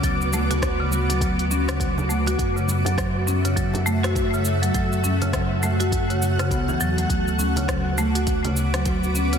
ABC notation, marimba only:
X:1
M:4/4
L:1/16
Q:"Swing 16ths" 1/4=102
K:F#m
V:1 name="Marimba" clef=bass
F, z A, F2 C, z F, F, z C C, F, z A, F | z C, z F, F, z C C, F, z A, F2 C, z F, | F, z C C, F, z A, F2 C, z C, B, E, F, A, | F, z C C, F, z A, F2 C, z F, F, z C C, |]